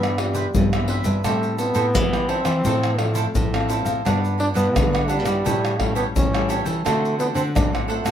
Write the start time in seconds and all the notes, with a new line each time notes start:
Already playing: G2 E3 B3 G4 B4 E5
0.03 pandeiro, tamborim, shaker
0.18 E3 G3 B3 C4, pandeiro, tamborim
0.34 G4 B4 C5 E5, pandeiro, shaker
0.55 G2 E3 B3 C4, pandeiro, shaker, surdo
0.73 E3 B3 C4 B4 C5 E5, pandeiro, tamborim, shaker
0.88 G4 B4 C5 E5, pandeiro
1.04 G2 B4 C5 E5, pandeiro, shaker
1.24 A2 G3 A3 C4 E4 A4 C5 E5 G5, pandeiro, tamborim, shaker, surdo
1.43 pandeiro, shaker
1.58 B3 A4 C5 E5 G5, pandeiro, shaker
1.75 A2 A4 C5 E5 G5, pandeiro, shaker
1.95 E3 G3 E4, pandeiro, tamborim, shaker, surdo
2.13 C5 E5 G5, pandeiro, tamborim, shaker
2.28 C4 A4 C5 E5 G5, pandeiro
2.45 E3 F3 C4 E4 C5 E5 G5, pandeiro, tamborim, shaker
2.65 A2 A4 C5 F5, pandeiro, shaker, surdo
2.83 pandeiro, tamborim, shaker
2.99 F3 A3 C4 E4, pandeiro, tamborim
3.15 E4 A4 C5 F5, pandeiro, shaker
3.35 A2, pandeiro, shaker, surdo
3.54 F3 C4 E4 A4 C5 F5, pandeiro, tamborim, shaker
3.69 E4 A4 C5 F5, pandeiro, shaker
3.85 A2 A4 C5 F5, pandeiro, shaker
4.05 G2 B3 D4 G4 B4 F#5, pandeiro, tamborim, shaker, surdo
4.25 pandeiro, shaker
4.38 D4 G4 B4 F#5, pandeiro
4.54 G2 B3 D4 G4 B4 F#5, pandeiro, shaker
4.76 D3 F#3 B3 D4, pandeiro, tamborim, shaker, surdo
4.93 G4 B4 F#5, pandeiro, tamborim, shaker
5.08 G3 D4 G4 B4 F#5, pandeiro, shaker
5.24 G2 G3 C#4 E4 G4 B4 F#5, pandeiro, tamborim, shaker
5.45 A2 G4 A4 C#5 G5, pandeiro, shaker, surdo
5.65 pandeiro, tamborim, shaker
5.80 G3 A3 C#4 E4, pandeiro, tamborim, surdo
5.95 B3 G4 A4 C#5 G5, pandeiro, shaker
6.16 A2 E3 C#4, pandeiro, shaker, surdo
6.33 G3 C#4 E4 A4 C#5 G5, pandeiro, tamborim, shaker
6.49 G4 A4 C#5 G5, pandeiro, shaker
6.65 E3 A4 C#5 G5, pandeiro, shaker
6.85 D3 A3 C4 D4 F#4 A4 C5 F#5, pandeiro, tamborim, shaker, surdo
7.05 pandeiro, shaker
7.19 B3 D4 A4 C5 F#5, pandeiro, shaker
7.34 D3 C4 D4 A4 C5 F#5, pandeiro, shaker
7.55 A2 A3 C4 D4 F#4, pandeiro, tamborim, shaker, surdo
7.73 A4 C5 F#5, pandeiro, tamborim, shaker
7.88 A3 D4 A4 C5 F#5, pandeiro
8.04 A2 A3 C4 F#4 A4 C5 F#5, pandeiro, tamborim, shaker